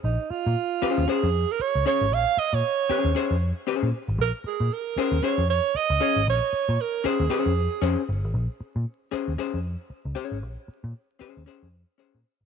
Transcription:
X:1
M:4/4
L:1/16
Q:"Swing 16ths" 1/4=116
K:Bbm
V:1 name="Alto saxophone"
E2 F6 A3 B d2 d2 | f2 e d8 z4 z | B2 A2 B4 d2 d2 e4 | d4 B2 A8 z2 |
z16 | z16 |]
V:2 name="Hollow-body jazz guitar"
z6 [DAc]2 [DAc]2 z4 [DAd]2 | z6 [DAc]2 [DAc]2 z2 [DAc]2 z2 | z6 [DAc]2 [DAc]2 z4 [DAd]2 | z6 [DAc]2 [DAc]2 z2 [DAc]2 z2 |
z6 [DAc]2 [DAc]2 z4 [DAd]2 | z6 [DAc]2 [DAc]2 z2 [DAc]2 z2 |]
V:3 name="Picked electric bass" clef=bass
B,,, z2 B,, z3 E,, z F,,2 z2 D,, z A,,, | B,,, z2 B,, z3 E,, z F,,2 z2 B,, z A,,, | B,,, z2 B,, z3 E,, z F,,2 z2 D,, z A,,, | B,,, z2 B,, z3 E,, z F,,2 z F,, z =G,,, A,,, |
B,,, z2 B,, z3 E,, z F,,2 z2 D,, z A,,, | B,,, z2 B,, z3 E,, z F,,2 z2 B,, z A,,, |]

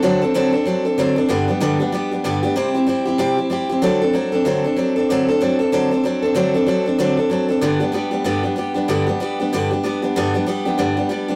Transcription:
X:1
M:4/4
L:1/8
Q:"Swing" 1/4=190
K:G
V:1 name="Steel-string acoustic guitar"
[D,F,CDA] [CDA] [D,F,CDA] [CDA] [F,CDA] [CDA] [D,F,CDA] [CDA] | [G,,D,G,B,DG] [G,B,DG] [G,,D,G,B,DG] [G,B,DG] [G,B,DG] [G,B,DG] [G,,D,G,B,DG] [G,B,DG] | [C,G,CEG] [CEG] [G,CEG] [CEG] [C,G,CEG] [CEG] [G,CEG] [CEG] | [D,F,CDA] [CDA] [F,CDA] [CDA] [D,F,CDA] [CDA] [F,CDA] [CDA] |
[D,F,CDA] [CDA] [F,CDA] [CDA] [D,F,CDA] [CDA] [F,CDA] [CDA] | [D,F,CDA] [CDA] [F,CDA] [CDA] [D,F,CDA] [CDA] [F,CDA] [CDA] | [G,,D,G,B,DG] [G,B,DG] [G,B,DG] [G,B,DG] [G,,D,G,B,DG] [G,B,DG] [G,B,DG] [G,B,DG] | [G,,D,G,B,DG] [G,B,DG] [G,B,DG] [G,B,DG] [G,,D,G,B,DG] [G,B,DG] [G,B,DG] [G,B,DG] |
[G,,D,G,B,DG] [G,B,DG] [G,B,DG] [G,B,DG] [G,,D,G,B,DG] [G,B,DG] [G,B,DG] [G,B,DG] |]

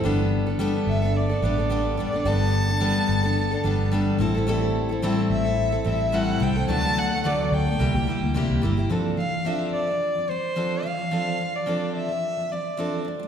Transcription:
X:1
M:4/4
L:1/16
Q:"Swing 16ths" 1/4=108
K:G
V:1 name="Violin"
z6 e2 d6 d2 | a12 z4 | z6 e4 e2 f2 g2 | a2 f2 d2 g6 z4 |
[K:Flyd] z2 f2 e2 d4 c4 f2- | f3 d3 e4 d4 z2 |]
V:2 name="Steel-string acoustic guitar"
[G,B,DA]3 [B,DA] [G,B,DA]3 [B,DA]2 [B,DA] [G,B,DA] [B,DA] [G,B,DA]2 [G,B,DA] [B,DA] | [G,B,DA]3 [B,DA] [G,B,DA]3 [B,DA]2 [B,DA] [G,B,DA]2 [G,B,DA]2 [G,CEA] [CEA] | [A,,G,CEA]3 [CEA] [A,,G,CEA]3 [CEA]2 [CEA] [G,CEA]2 [A,,G,CEA]2 [G,CEA] [CEA] | [D,F,A,B,A]3 [A,B,A] [D,F,A,B,A]3 [A,B,A] [C,G,_B,EG] [B,EG] [G,B,EG]2 [C,G,B,EG]2 [G,B,EG] [B,EG] |
[K:Flyd] [F,CDA]2 [F,C]2 [F,CDA]3 [F,C]2 [F,C] [F,C]2 [F,CDA]2 [F,C] [F,C] | [F,CDA]2 [F,C]2 [F,CDA]3 [F,C]2 [F,C] [F,C]2 [F,CDA]2 [G,A,] [G,A,] |]
V:3 name="Fingered electric bass" clef=bass
G,,,4- G,,, z G,,,4 A,,,4 F,,,2 | G,,,4- G,,, z G,,,4 G,,,4 A,,,2- | A,,,4- A,,, z A,,,4 A,,,4 C,,2 | D,,4- D,, z D,,2 C,, C,, z D,,2 C,, G,,,2 |
[K:Flyd] z16 | z16 |]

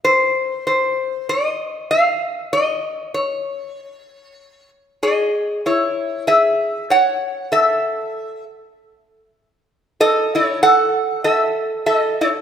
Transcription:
X:1
M:4/4
L:1/8
Q:"Swing" 1/4=97
K:Db
V:1 name="Resonator guitar played with a steel bar"
c2 c2 e2 f2 | e2 d4- d z | [K:C#m] [Gd]2 [Ec]2 [Ge]2 [cf]2 | [Ae]3 z4 z |
[Ad] [Ec] [Af]2 [Ae]2 [Ad] [Ec] |]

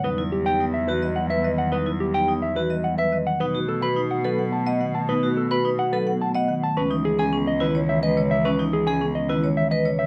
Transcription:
X:1
M:3/4
L:1/16
Q:1/4=107
K:Bphr
V:1 name="Clean electric guitar"
B z G g z e B z f e z f | B z G g z e B z f e z f | B z A b z f B z a f z a | B z A b z f B z a f z a |
B z ^G ^g z ^d B z e d z e | B z ^G ^g z ^d B z e d z e |]
V:2 name="Vibraphone"
^D E z G D z F ^d z B d z | ^D E z G D z F ^d z B d z | ^D F z B D z A f z ^d f z | ^D F z B D z A f z ^d f z |
^C ^D z ^G C z E ^c z B c z | ^C ^D z ^G C z E ^c z B c z |]
V:3 name="Marimba" clef=bass
G, F, G, ^D B, z E, G, F, G, ^D, F, | G, F, G, ^D B, z E, G, F, G, ^D, F, | B, A, B, F ^D F F, B, A, B, ^D, A, | B, A, B, F ^D F F, B, A, B, ^D, A, |
^G, E, G, ^C B, C ^D, G, E, G, ^C, E, | ^G, E, G, ^C B, C ^D, G, E, G, ^C, E, |]
V:4 name="Cello" clef=bass
E,,12- | E,,12 | B,,12- | B,,12 |
^C,,12- | ^C,,12 |]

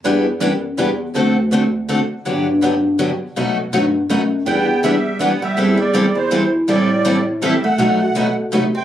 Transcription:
X:1
M:3/4
L:1/16
Q:"Swing" 1/4=163
K:Em
V:1 name="Accordion"
z12 | z12 | z12 | z12 |
g4 e4 f2 e2- | e2 d4 c4 z2 | d6 z2 e2 f2- | f6 z4 g2 |]
V:2 name="Steel-string acoustic guitar"
[E,G,DEB]2 z2 [E,G,DEB] z3 [E,G,DEB] z3 | [D,A,CFA]2 z2 [D,A,CFA] z3 [D,A,CFA] z3 | [D,F,B,DG]2 z2 [D,F,B,DG] z3 [D,F,B,DG] z3 | [B,,F,A,^DFB]2 z2 [B,,F,A,DFB] z3 [B,,F,A,DFB] z3 |
[E,G,DEB]2 z2 [E,G,DEB] z3 [E,G,DEB] z3 | [E,G,CEA]2 z2 [E,G,CEA] z3 [E,G,CEA] z3 | [E,G,CEA]2 z2 [E,G,CEA] z3 [E,G,CEA] z3 | [B,,F,A,^DFB]2 z2 [B,,F,A,DFB] z3 [B,,F,A,DFB] z3 |]
V:3 name="Steel-string acoustic guitar"
[E,B,DG]2 z2 [E,B,DG] z3 [E,B,DG] z3 | [D,A,CFA]2 z2 [D,A,CFA] z3 [D,A,CFA] z3 | [D,F,B,DG]2 z2 [D,F,B,DG] z3 [D,F,B,DG] z3 | [B,,F,A,^DF]2 z2 [B,,F,A,DF] z3 [B,,F,A,DF] z3 |
[E,B,DG]2 z2 [E,B,DG] z3 [E,B,DG] z3 | [E,G,CEA]2 z2 [E,G,CEA] z3 [E,G,CEA] z3 | [E,G,CEA]2 z2 [E,G,CEA] z3 [E,G,CEA] z3 | [B,,F,A,^DF]2 z2 [B,,F,A,DF] z3 [B,,F,A,DF] z3 |]
V:4 name="Steel-string acoustic guitar" clef=bass
z12 | z12 | z12 | z12 |
B,4 G,4 B,2 G,2- | G,2 G,4 E,4 z2 | G,6 z2 G,2 A,2- | A,6 z4 C2 |]
V:5 name="Bass clarinet" clef=bass
E,,4 F,,4 E,,4 | D,,12 | G,,12 | B,,4 G,,4 F,,4 |
E,,8- E,, z3 | E,,12 | A,,12 | B,,4 B,,4 C,4 |]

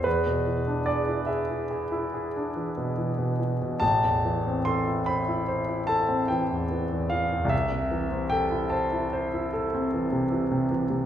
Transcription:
X:1
M:9/8
L:1/16
Q:3/8=49
K:Ephr
V:1 name="Grand piano"
B4 d2 e8- e2 z2 | a4 c'2 b4 a2 g4 f2 | e4 g2 a8- a2 z2 |]
V:2 name="Grand piano" clef=bass
E,, B,, E, D ^G E G E G E G D E, B,, E, B,, E, B,, | A,,, E,, E, C A E c E c E A C E, E,, E, E,, E, E,, | C,, C, E, C A E c E c E A C E, C, E, C, E, C, |]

